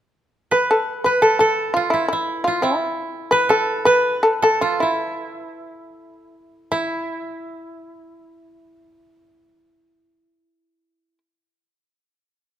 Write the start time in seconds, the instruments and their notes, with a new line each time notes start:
0.51 koto B4, shamisen B4
0.71 shamisen A4
1.04 shamisen B4, koto B4
1.22 shamisen A4, koto A4
1.39 shamisen A4, koto A4
1.74 shamisen F4, koto F4
1.90 shamisen E4, koto E4
2.08 shamisen E4
2.13 koto E4
2.44 shamisen F4, koto F4
2.62 shamisen E4, koto E4
3.31 shamisen B4, koto B4
3.49 koto A4, shamisen A4
3.85 shamisen B4, koto B4
4.23 shamisen A4
4.42 koto A4, shamisen A4
4.61 shamisen F4, koto F4
4.80 shamisen E4, koto E4
6.72 shamisen E4, koto E4